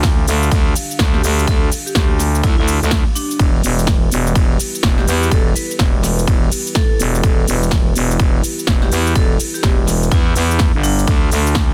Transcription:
0.00 0.26 D2 loud
0.00 3.36 D4 medium
0.00 11.03 G4 medium
0.00 3.36 F5 medium
0.00 kick loud
0.00 snare loud
0.00 ride medium
0.04 shaker soft
0.27 0.50 D2 loud
0.27 open hi-hat loud
0.27 shaker medium
0.43 shaker soft
0.51 0.74 D2 loud
0.51 kick loud
0.51 ride medium
0.51 shaker soft
0.75 open hi-hat loud
0.75 shaker medium
0.91 shaker soft
0.99 1.22 D2 loud
0.99 kick loud
0.99 snare loud
0.99 ride medium
0.99 shaker soft
1.14 1.20 G4 medium
1.14 snare soft
1.24 1.46 D2 loud
1.24 1.33 G4 medium
1.24 open hi-hat loud
1.24 shaker medium
1.39 shaker soft
1.47 1.70 D2 loud
1.47 1.61 A4 medium
1.47 kick loud
1.47 ride medium
1.47 shaker soft
1.72 open hi-hat loud
1.72 shaker medium
1.86 1.92 G4 medium
1.86 shaker soft
1.95 2.42 D2 loud
1.95 2.05 G4 medium
1.95 kick loud
1.95 snare loud
1.95 ride medium
1.95 shaker soft
2.19 snare soft
2.19 open hi-hat loud
2.19 shaker medium
2.35 shaker soft
2.43 2.56 D2 loud
2.43 2.53 E4 medium
2.43 kick loud
2.43 ride medium
2.43 shaker soft
2.58 2.80 D2 loud
2.58 2.64 E4 medium
2.68 open hi-hat loud
2.68 shaker medium
2.82 3.04 D2 loud
2.82 shaker soft
2.91 kick loud
2.91 snare loud
2.91 ride medium
2.91 shaker soft
3.15 3.45 D4 medium
3.15 open hi-hat loud
3.15 shaker medium
3.31 shaker soft
3.39 3.62 E1 loud
3.39 11.03 E4 medium
3.39 11.03 B4 medium
3.39 kick loud
3.39 ride medium
3.39 shaker soft
3.63 4.10 E1 loud
3.63 open hi-hat loud
3.63 shaker medium
3.79 shaker soft
3.87 kick loud
3.87 snare loud
3.87 ride medium
3.87 shaker soft
4.11 4.34 E1 loud
4.11 open hi-hat loud
4.11 shaker medium
4.27 shaker soft
4.35 4.58 E1 loud
4.35 kick loud
4.35 ride medium
4.35 shaker soft
4.59 open hi-hat loud
4.59 shaker medium
4.75 shaker soft
4.83 5.06 E1 loud
4.83 kick loud
4.83 snare loud
4.83 ride medium
4.83 shaker soft
4.98 5.04 G4 medium
4.98 snare soft
5.07 5.30 E2 loud
5.07 5.17 G4 medium
5.07 open hi-hat loud
5.07 shaker medium
5.23 shaker soft
5.31 5.54 E1 loud
5.31 5.45 A4 medium
5.31 kick loud
5.31 ride medium
5.31 shaker soft
5.55 5.69 B4 medium
5.55 open hi-hat loud
5.55 shaker medium
5.71 shaker soft
5.79 6.26 E1 loud
5.79 kick loud
5.79 snare loud
5.79 ride medium
5.79 shaker soft
6.03 snare soft
6.03 open hi-hat loud
6.03 shaker medium
6.19 shaker soft
6.27 6.50 E1 loud
6.27 kick loud
6.27 ride medium
6.27 shaker soft
6.52 open hi-hat loud
6.52 shaker medium
6.67 shaker soft
6.75 7.44 A4 medium
6.75 kick loud
6.75 snare loud
6.75 ride medium
6.75 shaker soft
7.00 7.22 E1 loud
7.00 open hi-hat loud
7.00 shaker medium
7.15 shaker soft
7.24 7.46 E1 loud
7.24 kick loud
7.24 ride medium
7.24 shaker soft
7.47 7.94 E1 loud
7.47 open hi-hat loud
7.47 shaker medium
7.63 shaker soft
7.71 kick loud
7.71 snare loud
7.71 ride medium
7.71 shaker soft
7.96 8.18 E1 loud
7.96 open hi-hat loud
7.96 shaker medium
8.11 shaker soft
8.20 8.42 E1 loud
8.20 kick loud
8.20 ride medium
8.20 shaker soft
8.44 open hi-hat loud
8.44 shaker medium
8.59 shaker soft
8.67 8.90 E1 loud
8.67 kick loud
8.67 snare loud
8.67 ride medium
8.67 shaker soft
8.82 8.88 G4 medium
8.82 snare soft
8.91 9.14 E2 loud
8.91 9.01 G4 medium
8.91 open hi-hat loud
8.91 shaker medium
9.07 shaker soft
9.15 9.38 E1 loud
9.15 9.29 A4 medium
9.15 kick loud
9.15 ride medium
9.15 shaker soft
9.39 open hi-hat loud
9.39 shaker medium
9.54 9.60 G4 medium
9.54 shaker soft
9.63 10.10 E1 loud
9.63 9.73 G4 medium
9.63 kick loud
9.63 snare loud
9.63 ride medium
9.63 shaker soft
9.87 snare soft
9.87 open hi-hat loud
9.87 shaker medium
10.03 shaker soft
10.11 10.34 E2 loud
10.11 10.21 E4 medium
10.11 kick loud
10.11 ride medium
10.11 shaker soft
10.26 10.32 E4 medium
10.35 10.72 E2 loud
10.35 open hi-hat loud
10.35 shaker medium
10.51 shaker soft
10.59 kick loud
10.59 snare loud
10.59 ride medium
10.59 shaker soft
10.74 11.06 G1 loud
10.83 11.13 D4 medium
10.83 open hi-hat loud
10.83 shaker medium
10.99 shaker soft
11.07 11.30 D2 loud
11.07 11.74 D4 medium
11.07 11.74 A4 medium
11.07 11.74 F5 medium
11.07 kick loud
11.07 ride medium
11.07 shaker soft
11.31 11.74 D2 loud
11.31 open hi-hat loud
11.31 shaker medium
11.47 shaker soft
11.55 kick loud
11.55 snare loud
11.55 ride medium
11.55 shaker soft

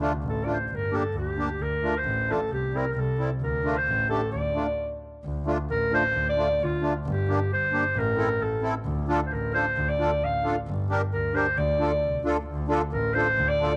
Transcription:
0.00 0.12 A3 medium
0.00 0.12 D4 medium
0.00 0.13 F4 medium
0.23 0.50 A1 medium
0.29 0.46 A4 medium
0.44 0.57 A3 medium
0.44 0.58 D4 medium
0.44 0.58 F4 medium
0.44 0.54 D5 medium
0.53 0.67 C5 medium
0.67 0.96 G1 medium
0.67 0.76 C5 soft
0.75 0.97 A#4 medium
0.90 1.03 A#3 medium
0.90 1.03 D4 medium
0.90 1.04 G4 medium
0.95 1.16 A4 medium
1.13 1.41 D2 medium
1.18 1.63 G4 medium
1.37 1.49 A#3 medium
1.37 1.49 D4 soft
1.37 1.50 G4 medium
1.59 1.87 D2 medium
1.59 1.99 A#4 medium
1.82 1.94 A3 medium
1.82 1.94 D4 medium
1.82 1.95 F4 medium
1.98 2.33 C5 loud
2.05 2.32 A1 loud
2.28 2.39 A3 medium
2.28 2.40 D4 medium
2.28 2.41 F4 medium
2.28 2.53 A4 medium
2.49 2.77 C2 medium
2.53 2.78 G4 medium
2.73 2.85 G3 medium
2.73 2.85 C4 medium
2.73 2.86 E4 medium
2.73 2.91 A#4 medium
2.91 3.22 C2 loud
2.91 3.01 A#4 medium
2.99 3.32 A4 medium
3.18 3.30 G3 medium
3.18 3.30 C4 medium
3.18 3.30 E4 medium
3.40 3.68 D2 medium
3.40 3.79 A#4 medium
3.64 3.76 A3 medium
3.64 3.76 D4 medium
3.64 3.76 F4 medium
3.77 4.09 C5 loud
3.87 4.14 A1 loud
4.09 4.21 A3 medium
4.09 4.21 D4 medium
4.09 4.22 G4 medium
4.09 4.31 A4 medium
4.32 4.60 D2 medium
4.32 4.96 D5 medium
4.54 4.66 A3 medium
4.54 4.67 D4 medium
4.54 4.67 F4 medium
5.24 5.51 D2 medium
5.46 5.57 A3 medium
5.46 5.58 D4 medium
5.46 5.58 F4 medium
5.70 5.97 A1 medium
5.70 5.91 A#4 loud
5.91 6.03 A3 medium
5.91 6.03 D4 medium
5.91 6.03 F4 medium
5.91 6.25 C5 loud
6.14 6.42 D2 medium
6.29 6.66 D5 loud
6.36 6.48 A3 medium
6.36 6.48 D4 medium
6.36 6.49 F4 medium
6.61 6.88 D2 medium
6.61 6.96 F4 medium
6.81 6.93 A3 medium
6.81 6.93 D4 medium
6.81 6.94 F4 medium
7.06 7.33 G1 loud
7.06 7.49 G4 medium
7.27 7.39 A#3 medium
7.27 7.39 D4 medium
7.27 7.40 G4 medium
7.51 7.78 G1 medium
7.51 8.00 C5 medium
7.72 7.84 A#3 medium
7.72 7.84 D4 medium
7.72 7.84 G4 medium
7.96 8.23 A1 loud
7.96 8.44 A#4 loud
8.16 8.29 C4 medium
8.16 8.29 E4 medium
8.16 8.29 A4 medium
8.41 8.68 A1 medium
8.41 8.76 A4 medium
8.62 8.74 C4 medium
8.62 8.74 E4 medium
8.62 8.75 A4 medium
8.85 9.13 D2 loud
9.08 9.20 D4 medium
9.08 9.20 F4 medium
9.08 9.21 A4 medium
9.26 9.34 C5 medium
9.32 9.59 A1 medium
9.32 9.53 A#4 medium
9.54 9.65 D4 medium
9.54 9.66 F4 medium
9.54 9.66 A4 medium
9.54 9.90 C5 medium
9.77 10.04 D2 loud
9.89 10.26 D5 loud
9.99 10.10 D4 medium
9.99 10.11 F4 medium
9.99 10.12 A4 medium
10.23 10.50 A1 medium
10.23 10.57 F5 medium
10.44 10.56 D4 medium
10.44 10.56 F4 medium
10.44 10.56 A4 medium
10.67 10.95 G1 loud
10.89 11.01 D4 medium
10.89 11.01 G4 medium
10.89 11.02 A#4 medium
11.13 11.40 D2 medium
11.13 11.37 A#4 medium
11.34 11.46 D4 medium
11.34 11.47 G4 medium
11.34 11.47 A#4 medium
11.34 11.59 C5 medium
11.57 11.85 D2 loud
11.57 12.26 D5 loud
11.79 11.91 D4 medium
11.79 11.92 F4 medium
11.79 11.92 A4 medium
12.04 12.24 C2 medium
12.25 12.46 D2 medium
12.25 12.37 D4 medium
12.25 12.37 F4 medium
12.25 12.37 A4 medium
12.47 12.74 D2 loud
12.68 12.81 D4 medium
12.68 12.81 F4 medium
12.68 12.82 A4 medium
12.92 13.20 A1 medium
12.92 13.15 A#4 loud
13.14 13.27 D4 medium
13.14 13.27 F4 medium
13.14 13.28 A4 medium
13.14 13.50 C5 loud
13.37 13.65 D2 loud
13.48 13.77 D5 loud
13.60 13.72 D4 medium
13.60 13.73 F4 medium
13.60 13.73 A4 medium

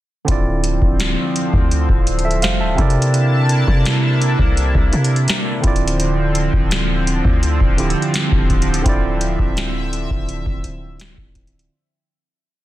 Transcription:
0.25 0.80 D1 loud
0.25 2.72 D3 medium
0.25 2.76 D3 medium
0.25 2.76 F3 medium
0.25 2.73 C4 medium
0.25 2.76 C4 medium
0.25 2.74 E4 medium
0.25 kick loud
0.25 closed hi-hat medium
0.30 2.75 F4 medium
0.30 2.05 D5 medium
0.64 closed hi-hat medium
0.82 1.16 D1 loud
0.82 kick medium
1.00 snare loud
1.00 closed hi-hat medium
1.36 closed hi-hat medium
1.53 1.88 D2 loud
1.53 kick medium
1.71 closed hi-hat medium
1.89 2.45 D1 loud
1.89 kick loud
2.07 closed hi-hat medium
2.19 closed hi-hat medium
2.25 2.42 A4 medium
2.25 2.42 E5 medium
2.31 closed hi-hat soft
2.42 2.62 F1 loud
2.42 2.60 C5 medium
2.42 2.60 F5 medium
2.42 snare loud
2.42 closed hi-hat medium
2.60 2.78 D1 medium
2.60 2.95 E5 medium
2.60 2.94 A5 medium
2.75 5.58 C3 medium
2.75 5.61 C3 medium
2.75 3.64 C3 loud
2.75 5.61 A#3 medium
2.75 5.59 C4 medium
2.75 5.61 D4 medium
2.75 5.59 E4 medium
2.75 5.61 E4 medium
2.75 5.61 A5 loud
2.75 kick loud
2.75 closed hi-hat soft
2.79 5.60 A4 medium
2.79 5.61 A#4 medium
2.79 5.62 D5 medium
2.90 closed hi-hat medium
3.02 closed hi-hat medium
3.14 closed hi-hat medium
3.49 closed hi-hat medium
3.68 4.36 C3 loud
3.68 kick medium
3.85 snare loud
3.85 closed hi-hat medium
4.22 closed hi-hat medium
4.39 4.73 C2 loud
4.39 kick medium
4.57 closed hi-hat medium
4.75 4.92 C2 loud
4.75 kick medium
4.93 5.27 C3 loud
4.93 closed hi-hat medium
5.04 closed hi-hat medium
5.16 closed hi-hat soft
5.28 snare loud
5.28 closed hi-hat medium
5.60 6.50 D1 loud
5.60 7.72 D3 medium
5.60 11.67 D3 medium
5.60 11.67 F3 medium
5.60 7.73 C4 medium
5.60 11.67 C4 medium
5.60 7.74 E4 medium
5.60 kick loud
5.60 closed hi-hat soft
5.60 open hi-hat medium
5.66 7.75 F4 medium
5.66 7.76 D5 medium
5.76 closed hi-hat medium
5.88 closed hi-hat medium
6.00 closed hi-hat medium
6.35 closed hi-hat medium
6.53 7.22 D1 loud
6.53 kick medium
6.71 snare loud
6.71 closed hi-hat medium
7.07 closed hi-hat medium
7.25 7.59 D2 loud
7.25 kick medium
7.43 closed hi-hat medium
7.60 7.95 D1 loud
7.60 kick loud
7.77 8.81 D3 medium
7.77 8.83 C4 medium
7.77 8.84 E4 medium
7.77 8.86 F4 medium
7.77 8.86 G4 medium
7.77 closed hi-hat medium
7.90 closed hi-hat medium
8.02 closed hi-hat soft
8.14 snare loud
8.14 closed hi-hat medium
8.32 8.83 D1 loud
8.32 kick medium
8.50 kick medium
8.50 closed hi-hat soft
8.62 closed hi-hat medium
8.74 closed hi-hat medium
8.82 9.37 D1 loud
8.82 11.65 D3 medium
8.82 11.66 C4 medium
8.82 11.67 E4 medium
8.82 11.68 E5 medium
8.82 kick loud
8.82 closed hi-hat medium
8.87 11.68 F4 medium
8.87 11.69 D5 medium
9.21 closed hi-hat medium
9.39 10.08 D1 loud
9.39 kick medium
9.57 snare loud
9.57 closed hi-hat medium
9.93 closed hi-hat medium
10.10 10.45 D1 loud
10.10 kick medium
10.29 closed hi-hat medium
10.46 10.63 D1 loud
10.46 kick loud
10.64 11.16 D1 loud
10.64 closed hi-hat medium
11.00 snare loud
11.00 closed hi-hat medium
11.18 11.69 D1 loud
11.18 kick medium
11.35 kick loud
11.35 closed hi-hat soft
11.35 open hi-hat medium
11.47 closed hi-hat medium
11.59 closed hi-hat medium

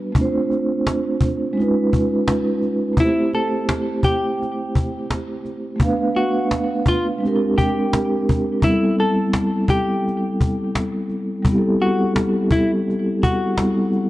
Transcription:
0.00 0.10 B3 medium
0.00 0.12 D4 medium
0.00 0.13 F#4 medium
0.00 0.14 B4 medium
0.12 1.52 A3 medium
0.12 1.53 C4 medium
0.12 cajon bass loud
0.17 1.54 D4 medium
0.17 1.55 F4 medium
0.21 1.57 C5 medium
0.51 cajon slap soft
0.87 cajon slap loud
1.21 cajon bass medium
1.53 2.93 G#3 medium
1.53 2.94 C#4 medium
1.57 2.95 D#4 medium
1.57 2.96 F4 medium
1.57 cajon slap soft
1.62 2.97 B4 medium
1.93 cajon bass medium
2.28 cajon slap loud
2.62 cajon slap soft
2.93 5.74 A3 medium
2.93 5.75 C4 medium
2.93 cajon bass loud
2.98 5.76 E4 medium
2.98 3.31 E4 medium
2.98 5.77 G4 medium
3.02 5.78 C5 medium
3.33 4.00 A4 medium
3.33 cajon slap soft
3.69 cajon slap loud
4.03 5.06 G4 medium
4.03 cajon bass medium
4.42 cajon slap soft
4.75 cajon bass medium
5.10 cajon slap loud
5.45 cajon slap soft
5.76 7.16 A3 medium
5.76 7.17 B3 medium
5.80 7.18 D4 medium
5.80 7.19 F5 medium
5.80 cajon bass loud
5.85 7.21 B4 medium
6.16 6.48 F#4 medium
6.16 cajon slap soft
6.51 cajon slap loud
6.86 7.07 F4 medium
6.86 cajon bass loud
7.18 8.58 G#3 medium
7.18 8.59 C4 medium
7.23 8.60 D4 medium
7.23 8.62 G4 medium
7.23 cajon slap soft
7.28 8.63 A#4 medium
7.58 8.59 G4 medium
7.58 cajon bass medium
7.93 cajon slap loud
8.29 cajon bass medium
8.60 11.40 G3 medium
8.60 11.41 B3 medium
8.60 8.95 E4 loud
8.60 cajon bass loud
8.65 11.42 C4 medium
8.65 11.43 E4 medium
8.69 11.44 A4 medium
8.99 9.65 A4 medium
8.99 cajon slap soft
9.33 cajon slap loud
9.68 10.71 G4 medium
9.68 cajon bass medium
10.08 cajon slap soft
10.41 cajon bass medium
10.75 cajon slap loud
11.09 cajon slap soft
11.43 13.51 G3 medium
11.43 13.52 B3 medium
11.43 cajon bass loud
11.47 13.53 C4 medium
11.47 13.55 E4 medium
11.51 11.56 G4 medium
11.58 13.57 A4 medium
11.81 12.13 F#4 medium
11.81 cajon slap soft
12.16 cajon slap loud
12.51 12.71 E4 medium
12.51 cajon bass medium
12.90 cajon slap soft
13.23 14.10 F#4 medium
13.23 cajon bass medium
13.54 14.10 G3 soft
13.54 14.10 B3 soft
13.54 14.10 C4 soft
13.54 14.10 E4 soft
13.54 cajon slap loud
13.59 14.10 A4 soft
13.92 cajon slap soft

